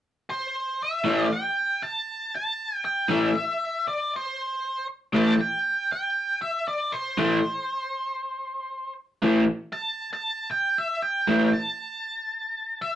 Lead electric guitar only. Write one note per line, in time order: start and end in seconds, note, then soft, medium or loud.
0.30 0.82 C5 medium
0.83 1.34 E5 medium
1.33 1.83 G5 loud
1.83 2.34 A5 loud
2.36 2.85 A5 loud
2.85 3.10 G5 loud
3.09 3.34 E5 loud
3.36 3.87 E5 loud
3.88 4.13 D5 medium
4.16 4.86 C5 medium
5.16 5.40 A5 loud
5.41 5.91 G5 loud
5.92 6.39 G5 loud
6.42 6.67 E5 medium
6.68 6.93 D5 medium
6.92 8.93 C5 medium
9.73 10.09 A5 loud
10.13 10.50 A5 loud
10.51 10.77 G5 medium
10.78 11.01 E5 medium
11.02 11.45 G5 loud
11.46 11.53 G5 medium
11.53 12.85 A5 loud
12.82 12.95 E5 medium